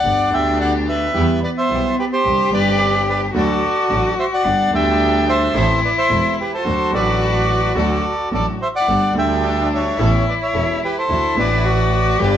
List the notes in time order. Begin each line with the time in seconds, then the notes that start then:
Already playing: D5 F#5
0.02 G1 G2 D3 A3 B3 D4 G4
0.30 D2 D3 A3 B3 G4 E5 G5
0.61 D5 F#5
0.89 B4 E5
1.14 E2 E3 G3 B3 E4 G4
1.44 B4 D5
1.58 C5 E5
1.69 B1 B2 E3 G3 B3 E4 G4
2.00 G4 B4
2.13 G4 C5
2.24 C2 C3 D3 G3 C4 D4 G4
2.50 G1 G2 D3 G3 C4 D4 G4 B4 D5
2.54 G4
3.09 B4 D5
3.34 D2 D3 F#3 A3 D4 F#4 A4 D5
3.89 A1 A2 D3 F#3 A3 D4 F#4
4.19 C5 E5
4.34 D5 F#5
4.44 G1 G2 D3 G3 B3 D4 G4
4.71 D2 D3 G3 B3 D4 G4 E5 G5
5.29 C5 E5
5.54 A1 A2 E3 A3 C4 E4 A4
5.85 B4 D5
5.98 C5 E5
6.09 E1 E2 E3 A3 C4 E4 A4
6.40 G4 B4
6.54 F4 A4 C5
6.65 D2 D3 F#3 A3 D4 F#4 A4
6.90 A1 A2 F#3 A3 D4 F#4 A4
6.95 B4 D5
7.75 D2 D3 F#3 A3 D4 F#4 A4 D5
8.31 A1 A2 F#3 A3 D4 F#4 A4 D5
8.62 C5 E5
8.76 D5 F#5
8.80 E4
8.86 G1 G2 G3 A3 D4 G4 A4
9.13 D2 D3 G3 A3 D4 G4 A4
9.18 E5 G5
9.74 C#5 E5
9.97 A1 A2 E3 B3 C#4 E4 A4
10.29 B4 D5
10.43 C#5 E5
10.54 E1 E2 E3 B3 C#4 A4
10.85 G4 B4
10.98 A4 C5
11.09 D2 D3 E3 A3 D4 E4 F#4
11.35 A1 A2 E3 A3 D4 E4 F#4
11.39 F#4 B4 D5
11.65 F#4
12.19 G1 G2 D3 G3 B3 D4 G4 B4
12.23 D5